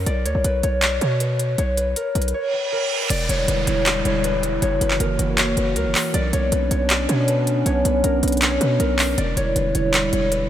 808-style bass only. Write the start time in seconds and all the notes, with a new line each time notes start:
0.06 B1
0.25 D2
0.35 B1
0.44 B1
0.63 B1
1.01 B2
1.58 B1
2.15 B1
3.10 E1
3.29 E1
3.48 E1
3.67 E1
4.05 E1
4.62 F#1
4.81 F#1
5.00 F#1
5.19 F#1
5.57 F#1
5.76 C#2
5.86 F#1
6.14 B1
6.33 B1
6.52 B1
6.71 B1
7.09 B2
7.66 B1
7.85 B1
8.04 B1
8.23 B1
8.61 B2
8.80 B1
9.18 E1
9.37 E1
9.56 E1
9.75 E1
10.13 E1